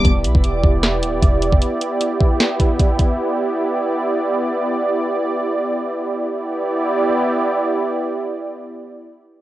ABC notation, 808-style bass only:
X:1
M:4/4
L:1/16
Q:1/4=153
K:Em
V:1 name="808-style bass" clef=bass
E,,,2 B,,, E,,,3 E,,,4 D,,, E,,, E,,,3 E,,, | z16 | z16 | z16 |
z16 | z16 |]